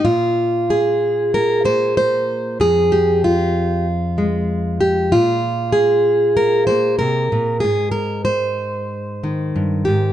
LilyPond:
\new Staff \with { instrumentName = "Steel-string acoustic guitar" } { \time 4/4 \key f \minor \tempo 4 = 95 << { f'4 aes'4 bes'8 c''8 c''4 | aes'8 g'8 f'2~ f'8 g'8 | f'4 aes'4 bes'8 c''8 bes'4 | aes'8 bes'8 c''2~ c''8 g'8 | } \\ { bes,2~ bes,8 bes4. | f,2~ f,8 aes4. | bes,2~ bes,8 bes8 c8 bes,8 | aes,2~ aes,8 ees8 g,8 aes,8 | } >> }